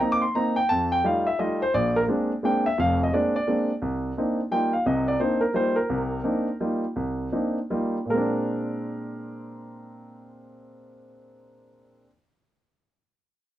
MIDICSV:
0, 0, Header, 1, 2, 480
1, 0, Start_track
1, 0, Tempo, 346021
1, 952, Time_signature, 3, 2, 24, 8
1, 8152, Tempo, 358209
1, 10072, Tempo, 391901
1, 11032, Tempo, 408719
1, 17482, End_track
2, 0, Start_track
2, 0, Title_t, "Grand piano"
2, 0, Program_c, 0, 0
2, 1, Note_on_c, 0, 82, 78
2, 9, Note_on_c, 0, 60, 50
2, 11, Note_on_c, 0, 58, 58
2, 18, Note_on_c, 0, 63, 62
2, 152, Note_off_c, 0, 82, 0
2, 173, Note_on_c, 0, 86, 104
2, 305, Note_on_c, 0, 84, 79
2, 318, Note_off_c, 0, 86, 0
2, 324, Note_off_c, 0, 60, 0
2, 325, Note_off_c, 0, 58, 0
2, 328, Note_off_c, 0, 63, 0
2, 463, Note_off_c, 0, 84, 0
2, 488, Note_on_c, 0, 58, 53
2, 493, Note_on_c, 0, 82, 84
2, 496, Note_on_c, 0, 60, 48
2, 501, Note_on_c, 0, 63, 63
2, 779, Note_off_c, 0, 82, 0
2, 783, Note_on_c, 0, 79, 88
2, 803, Note_off_c, 0, 58, 0
2, 807, Note_off_c, 0, 60, 0
2, 810, Note_off_c, 0, 63, 0
2, 949, Note_off_c, 0, 79, 0
2, 960, Note_on_c, 0, 81, 96
2, 985, Note_on_c, 0, 41, 68
2, 1253, Note_off_c, 0, 81, 0
2, 1275, Note_on_c, 0, 79, 87
2, 1383, Note_off_c, 0, 41, 0
2, 1435, Note_off_c, 0, 79, 0
2, 1443, Note_on_c, 0, 55, 60
2, 1447, Note_on_c, 0, 57, 50
2, 1449, Note_on_c, 0, 63, 51
2, 1450, Note_on_c, 0, 65, 65
2, 1470, Note_on_c, 0, 77, 78
2, 1747, Note_off_c, 0, 77, 0
2, 1755, Note_on_c, 0, 76, 82
2, 1760, Note_off_c, 0, 55, 0
2, 1762, Note_off_c, 0, 57, 0
2, 1763, Note_off_c, 0, 63, 0
2, 1763, Note_off_c, 0, 65, 0
2, 1915, Note_off_c, 0, 76, 0
2, 1924, Note_on_c, 0, 57, 50
2, 1927, Note_on_c, 0, 55, 52
2, 1929, Note_on_c, 0, 75, 78
2, 1932, Note_on_c, 0, 63, 51
2, 1933, Note_on_c, 0, 65, 65
2, 2217, Note_off_c, 0, 75, 0
2, 2240, Note_off_c, 0, 57, 0
2, 2241, Note_off_c, 0, 55, 0
2, 2244, Note_off_c, 0, 63, 0
2, 2244, Note_off_c, 0, 65, 0
2, 2250, Note_on_c, 0, 72, 88
2, 2402, Note_off_c, 0, 72, 0
2, 2413, Note_on_c, 0, 34, 73
2, 2418, Note_on_c, 0, 74, 95
2, 2701, Note_off_c, 0, 74, 0
2, 2723, Note_on_c, 0, 70, 90
2, 2816, Note_off_c, 0, 34, 0
2, 2819, Note_off_c, 0, 70, 0
2, 2888, Note_on_c, 0, 56, 53
2, 2891, Note_on_c, 0, 58, 47
2, 2896, Note_on_c, 0, 62, 62
2, 2897, Note_on_c, 0, 60, 50
2, 3202, Note_off_c, 0, 56, 0
2, 3203, Note_off_c, 0, 58, 0
2, 3206, Note_off_c, 0, 60, 0
2, 3206, Note_off_c, 0, 62, 0
2, 3369, Note_on_c, 0, 56, 53
2, 3377, Note_on_c, 0, 58, 53
2, 3381, Note_on_c, 0, 62, 62
2, 3385, Note_on_c, 0, 60, 49
2, 3397, Note_on_c, 0, 79, 79
2, 3670, Note_off_c, 0, 79, 0
2, 3682, Note_off_c, 0, 56, 0
2, 3686, Note_off_c, 0, 58, 0
2, 3688, Note_off_c, 0, 62, 0
2, 3688, Note_on_c, 0, 76, 88
2, 3690, Note_off_c, 0, 60, 0
2, 3841, Note_off_c, 0, 76, 0
2, 3851, Note_on_c, 0, 41, 69
2, 3858, Note_on_c, 0, 29, 65
2, 3877, Note_on_c, 0, 77, 97
2, 4150, Note_off_c, 0, 77, 0
2, 4204, Note_on_c, 0, 75, 78
2, 4255, Note_off_c, 0, 41, 0
2, 4258, Note_off_c, 0, 29, 0
2, 4338, Note_on_c, 0, 56, 55
2, 4339, Note_off_c, 0, 75, 0
2, 4343, Note_on_c, 0, 58, 48
2, 4347, Note_on_c, 0, 74, 82
2, 4350, Note_on_c, 0, 60, 48
2, 4353, Note_on_c, 0, 62, 60
2, 4625, Note_off_c, 0, 74, 0
2, 4647, Note_off_c, 0, 56, 0
2, 4649, Note_off_c, 0, 58, 0
2, 4652, Note_off_c, 0, 60, 0
2, 4654, Note_off_c, 0, 62, 0
2, 4657, Note_on_c, 0, 74, 84
2, 4810, Note_on_c, 0, 58, 50
2, 4814, Note_on_c, 0, 60, 48
2, 4815, Note_on_c, 0, 56, 51
2, 4818, Note_on_c, 0, 62, 60
2, 5123, Note_off_c, 0, 58, 0
2, 5125, Note_off_c, 0, 56, 0
2, 5125, Note_off_c, 0, 60, 0
2, 5127, Note_off_c, 0, 62, 0
2, 5165, Note_off_c, 0, 74, 0
2, 5294, Note_on_c, 0, 36, 67
2, 5697, Note_off_c, 0, 36, 0
2, 5789, Note_on_c, 0, 58, 48
2, 5794, Note_on_c, 0, 60, 47
2, 5799, Note_on_c, 0, 62, 48
2, 5801, Note_on_c, 0, 63, 57
2, 6092, Note_off_c, 0, 58, 0
2, 6095, Note_off_c, 0, 60, 0
2, 6098, Note_off_c, 0, 62, 0
2, 6099, Note_off_c, 0, 63, 0
2, 6260, Note_on_c, 0, 55, 52
2, 6265, Note_on_c, 0, 58, 50
2, 6265, Note_on_c, 0, 79, 84
2, 6270, Note_on_c, 0, 63, 47
2, 6275, Note_on_c, 0, 65, 57
2, 6545, Note_off_c, 0, 79, 0
2, 6564, Note_on_c, 0, 77, 78
2, 6568, Note_off_c, 0, 55, 0
2, 6571, Note_off_c, 0, 58, 0
2, 6574, Note_off_c, 0, 63, 0
2, 6576, Note_off_c, 0, 65, 0
2, 6719, Note_off_c, 0, 77, 0
2, 6741, Note_on_c, 0, 36, 66
2, 6743, Note_on_c, 0, 48, 67
2, 6750, Note_on_c, 0, 75, 71
2, 7028, Note_off_c, 0, 75, 0
2, 7049, Note_on_c, 0, 74, 78
2, 7141, Note_off_c, 0, 36, 0
2, 7142, Note_off_c, 0, 48, 0
2, 7202, Note_off_c, 0, 74, 0
2, 7214, Note_on_c, 0, 58, 53
2, 7214, Note_on_c, 0, 60, 50
2, 7217, Note_on_c, 0, 72, 76
2, 7226, Note_on_c, 0, 62, 47
2, 7230, Note_on_c, 0, 63, 57
2, 7501, Note_off_c, 0, 72, 0
2, 7505, Note_on_c, 0, 70, 75
2, 7526, Note_off_c, 0, 60, 0
2, 7527, Note_off_c, 0, 58, 0
2, 7532, Note_off_c, 0, 62, 0
2, 7534, Note_off_c, 0, 63, 0
2, 7670, Note_off_c, 0, 70, 0
2, 7686, Note_on_c, 0, 55, 56
2, 7690, Note_on_c, 0, 58, 46
2, 7694, Note_on_c, 0, 63, 46
2, 7697, Note_on_c, 0, 65, 60
2, 7714, Note_on_c, 0, 72, 87
2, 7991, Note_off_c, 0, 72, 0
2, 7993, Note_on_c, 0, 70, 80
2, 8003, Note_off_c, 0, 55, 0
2, 8005, Note_off_c, 0, 58, 0
2, 8007, Note_off_c, 0, 63, 0
2, 8009, Note_off_c, 0, 65, 0
2, 8180, Note_on_c, 0, 36, 65
2, 8181, Note_on_c, 0, 48, 68
2, 8570, Note_off_c, 0, 36, 0
2, 8571, Note_off_c, 0, 48, 0
2, 8636, Note_on_c, 0, 58, 52
2, 8641, Note_on_c, 0, 60, 46
2, 8644, Note_on_c, 0, 62, 48
2, 8650, Note_on_c, 0, 63, 56
2, 8945, Note_off_c, 0, 58, 0
2, 8948, Note_off_c, 0, 60, 0
2, 8949, Note_off_c, 0, 62, 0
2, 8953, Note_off_c, 0, 63, 0
2, 9046, Note_off_c, 0, 70, 0
2, 9125, Note_on_c, 0, 55, 51
2, 9127, Note_on_c, 0, 58, 47
2, 9129, Note_on_c, 0, 63, 49
2, 9132, Note_on_c, 0, 65, 57
2, 9433, Note_off_c, 0, 55, 0
2, 9434, Note_off_c, 0, 58, 0
2, 9435, Note_off_c, 0, 63, 0
2, 9437, Note_off_c, 0, 65, 0
2, 9603, Note_on_c, 0, 36, 66
2, 10019, Note_off_c, 0, 36, 0
2, 10088, Note_on_c, 0, 58, 49
2, 10089, Note_on_c, 0, 62, 47
2, 10093, Note_on_c, 0, 60, 49
2, 10096, Note_on_c, 0, 63, 57
2, 10395, Note_off_c, 0, 58, 0
2, 10396, Note_off_c, 0, 62, 0
2, 10398, Note_off_c, 0, 60, 0
2, 10399, Note_off_c, 0, 63, 0
2, 10556, Note_on_c, 0, 55, 53
2, 10557, Note_on_c, 0, 63, 47
2, 10561, Note_on_c, 0, 58, 48
2, 10561, Note_on_c, 0, 65, 57
2, 10877, Note_off_c, 0, 55, 0
2, 10878, Note_off_c, 0, 63, 0
2, 10879, Note_off_c, 0, 58, 0
2, 10879, Note_off_c, 0, 65, 0
2, 10985, Note_on_c, 0, 46, 56
2, 11034, Note_on_c, 0, 56, 54
2, 11041, Note_on_c, 0, 70, 77
2, 11081, Note_on_c, 0, 60, 56
2, 11126, Note_on_c, 0, 62, 68
2, 15631, Note_off_c, 0, 70, 0
2, 15651, Note_off_c, 0, 46, 0
2, 15674, Note_off_c, 0, 56, 0
2, 15698, Note_off_c, 0, 60, 0
2, 15720, Note_off_c, 0, 62, 0
2, 17482, End_track
0, 0, End_of_file